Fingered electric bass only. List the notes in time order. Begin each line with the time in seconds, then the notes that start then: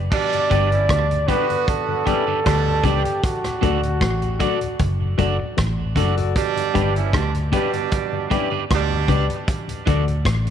0.51 G1
0.89 D2
2.46 D2
2.84 C#2
3.63 D2
4.02 A1
4.80 F#1
5.19 F#1
5.59 A1
5.96 F#1
6.76 G1
7.14 D2
8.71 D2
9.09 C#2
9.87 D2
10.26 A1